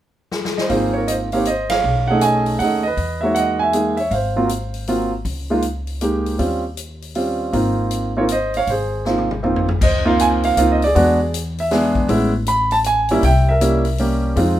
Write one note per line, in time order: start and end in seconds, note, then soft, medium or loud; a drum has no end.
0.32 snare medium
0.45 snare medium
0.57 0.69 C5 medium
0.57 0.71 D#5 medium
0.57 snare medium
0.69 1.80 G#1 medium
0.69 1.27 A#3 medium
0.69 1.27 C4 soft
0.69 1.27 D#4 medium
0.69 1.27 F4 medium
0.69 0.94 G#4 medium
0.69 0.95 C5 medium
0.69 kick soft
0.69 open hi-hat soft
0.93 1.08 A#4 medium
0.93 1.08 C#5 medium
1.08 1.16 C5 medium
1.08 1.13 D#5 medium
1.08 closed hi-hat soft
1.32 1.45 A#3 medium
1.32 1.45 C4 medium
1.32 1.45 D#4 soft
1.32 1.46 G4 medium
1.32 1.46 F5 medium
1.32 open hi-hat soft
1.36 1.47 C#5 medium
1.45 1.72 D#5 medium
1.45 closed hi-hat soft
1.50 1.71 C5 medium
1.70 2.09 F5 loud
1.70 snare medium
1.70 ride medium
1.74 2.07 C#5 medium
1.84 2.56 B1 medium
2.08 2.58 A3 medium
2.08 2.58 C#4 medium
2.08 2.58 D#4 medium
2.08 2.58 G#4 medium
2.08 2.22 D#5 medium
2.08 2.20 F#5 medium
2.21 2.59 D#5 medium
2.21 2.61 G#5 medium
2.21 closed hi-hat soft
2.46 open hi-hat soft
2.59 2.95 D#2 medium
2.59 2.82 A3 medium
2.59 2.82 C#4 soft
2.59 2.82 D#4 soft
2.59 2.83 G#4 medium
2.59 2.82 F#5 medium
2.59 open hi-hat soft
2.64 2.82 D#5 medium
2.83 3.19 D#5 medium
2.87 3.21 B4 medium
2.97 4.07 E2 medium
2.97 kick soft
2.97 open hi-hat soft
3.21 3.71 G#3 medium
3.21 3.71 A#3 medium
3.21 3.71 D#4 soft
3.21 3.71 F#4 medium
3.21 3.35 E5 medium
3.25 3.36 C#5 medium
3.35 3.60 F#5 medium
3.35 closed hi-hat soft
3.39 3.60 D#5 medium
3.59 3.96 E5 medium
3.59 3.95 G#5 medium
3.73 3.96 G#3 soft
3.73 3.96 A#3 soft
3.73 3.96 D#4 soft
3.73 3.96 G#4 medium
3.73 closed hi-hat soft
3.97 4.12 C#5 medium
3.97 4.11 E5 medium
3.97 open hi-hat soft
4.11 5.21 G#1 medium
4.11 4.85 C5 medium
4.11 4.83 F5 medium
4.11 kick soft
4.11 open hi-hat soft
4.36 4.48 F#3 medium
4.36 4.49 A#3 medium
4.36 4.48 C4 medium
4.36 4.49 F4 medium
4.49 closed hi-hat soft
4.74 open hi-hat soft
4.87 5.10 F#3 medium
4.87 5.10 A#3 medium
4.87 5.10 C4 soft
4.87 5.10 F4 medium
4.87 open hi-hat soft
5.25 6.35 C#2 medium
5.25 kick soft
5.25 open hi-hat soft
5.50 5.62 G#3 medium
5.50 5.62 A#3 medium
5.50 5.63 D#4 medium
5.50 5.63 F4 medium
5.62 closed hi-hat soft
5.87 open hi-hat soft
6.01 6.39 G#3 medium
6.01 6.39 A#3 medium
6.01 6.39 D#4 soft
6.01 6.40 G4 medium
6.01 closed hi-hat soft
6.26 open hi-hat soft
6.38 7.49 D#2 medium
6.38 6.61 G3 medium
6.38 6.61 C4 soft
6.38 6.61 C#4 soft
6.38 6.61 F4 medium
6.38 kick soft
6.38 open hi-hat soft
6.77 closed hi-hat soft
7.02 open hi-hat soft
7.15 7.53 G3 medium
7.15 7.51 C4 soft
7.15 7.54 C#4 soft
7.15 7.52 F4 medium
7.15 open hi-hat soft
7.53 8.63 G#1 medium
7.53 8.11 A#3 medium
7.53 8.11 C4 soft
7.53 8.11 D#4 medium
7.53 8.11 F4 medium
7.53 kick soft
7.53 open hi-hat soft
7.91 closed hi-hat soft
8.17 8.28 A#3 medium
8.17 8.29 C4 medium
8.17 8.28 D#4 soft
8.17 8.29 F4 medium
8.17 8.25 A#4 medium
8.17 8.23 C#5 medium
8.29 8.54 D#5 medium
8.29 closed hi-hat soft
8.33 8.54 C5 medium
8.54 8.69 F5 medium
8.54 open hi-hat soft
8.58 8.69 C#5 medium
8.67 9.77 G#1 medium
8.67 9.41 C5 medium
8.67 kick soft
8.67 open hi-hat soft
8.71 9.41 G#4 medium
9.05 9.28 A#3 medium
9.05 9.28 C4 medium
9.05 9.28 D#4 soft
9.05 9.28 F4 medium
9.05 snare soft
9.18 mid tom soft
9.31 mid tom medium
9.43 9.65 A#3 medium
9.43 9.65 C4 medium
9.43 9.65 D#4 medium
9.43 9.65 F4 medium
9.43 floor tom medium
9.56 floor tom medium
9.68 floor tom medium
9.81 10.53 C#2 medium
9.81 10.41 C5 medium
9.81 10.07 D#5 medium
9.81 kick medium
9.81 crash medium
10.05 10.54 A#3 medium
10.05 10.54 C4 medium
10.05 10.54 D#4 medium
10.05 10.55 F4 medium
10.05 10.21 F5 medium
10.19 10.26 G#5 medium
10.19 closed hi-hat medium
10.43 10.71 F5 medium
10.43 open hi-hat soft
10.57 10.92 C#2 medium
10.57 10.79 A#3 medium
10.57 10.79 C4 medium
10.57 10.79 D#4 medium
10.57 10.80 F4 medium
10.57 closed hi-hat medium
10.72 10.84 D#5 medium
10.82 11.30 D5 medium
10.82 open hi-hat soft
10.86 11.39 G#4 medium
10.95 12.05 E2 medium
10.95 11.17 G#3 medium
10.95 11.17 B3 medium
10.95 11.17 D4 medium
10.95 11.18 F#4 medium
10.95 kick soft
10.95 open hi-hat soft
11.34 closed hi-hat medium
11.58 11.94 E5 medium
11.58 open hi-hat soft
11.71 12.07 G#3 medium
11.71 12.08 B3 medium
11.71 12.09 D4 medium
11.71 12.10 G#4 medium
11.71 snare soft
11.71 open hi-hat soft
11.95 kick medium
12.08 13.19 A1 medium
12.08 12.31 G#3 medium
12.08 12.31 B3 medium
12.08 12.31 C#4 medium
12.08 12.31 E4 medium
12.08 kick soft
12.08 open hi-hat soft
12.46 12.73 B5 loud
12.46 closed hi-hat medium
12.71 12.77 A5 medium
12.71 open hi-hat soft
12.84 13.21 G#5 medium
12.84 closed hi-hat medium
13.09 13.22 G3 medium
13.09 13.22 A#3 medium
13.09 13.23 C#4 medium
13.09 13.23 E4 medium
13.09 open hi-hat soft
13.23 14.33 C2 medium
13.23 13.47 E5 medium
13.23 13.49 G5 medium
13.23 kick soft
13.23 open hi-hat soft
13.49 14.21 A#4 medium
13.49 14.20 E5 medium
13.61 13.83 G3 medium
13.61 13.83 A#3 medium
13.61 13.83 C#4 medium
13.61 13.83 E4 medium
13.61 closed hi-hat medium
13.85 open hi-hat soft
13.98 14.37 G3 medium
13.98 14.38 A#3 medium
13.98 14.37 C#4 medium
13.98 14.37 G4 medium
13.98 open hi-hat soft
14.36 14.60 F2 medium
14.36 14.60 G#3 medium
14.36 14.60 C4 medium
14.36 14.60 D#4 medium
14.36 14.60 F4 medium
14.36 kick soft
14.36 open hi-hat soft